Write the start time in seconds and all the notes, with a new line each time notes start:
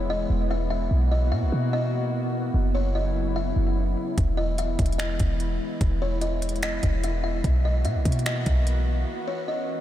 Already playing: E1 E3 G#3 B3 E4
0.10 D#5
0.30 E1
0.51 E5
0.70 E5
0.91 B1 A#3 F#4
1.12 D#5
1.32 B2 E5
1.42 B1
1.52 B2
1.73 D#5
2.54 F#1 C#3 F#3 E4
2.75 C#5
2.95 D#5
3.36 E5
3.56 F#1
4.18 E1 E3 G#3 E4, kick, closed hi-hat
4.37 D#5
4.58 E5, closed hi-hat
4.79 E1, kick, closed hi-hat
4.86 closed hi-hat
4.92 closed hi-hat
4.98 D#5, finger snap, closed hi-hat
5.20 E1, kick, closed hi-hat
5.40 closed hi-hat
5.81 E1, kick, closed hi-hat
6.02 C#5
6.21 D#5, closed hi-hat
6.42 closed hi-hat
6.49 closed hi-hat
6.56 closed hi-hat
6.63 D#5, finger snap, closed hi-hat
6.83 E1, kick, closed hi-hat
7.04 E5, closed hi-hat
7.24 E5
7.44 B1 A#3 B3 F#4, kick, closed hi-hat
7.65 D#5
7.85 B2 E5, closed hi-hat
7.95 B1
8.05 B2, kick, closed hi-hat
8.12 closed hi-hat
8.19 closed hi-hat
8.26 D#5, finger snap, closed hi-hat
8.46 B1, kick, closed hi-hat
8.67 closed hi-hat
9.07 E3 C#4
9.28 C#5
9.48 D#5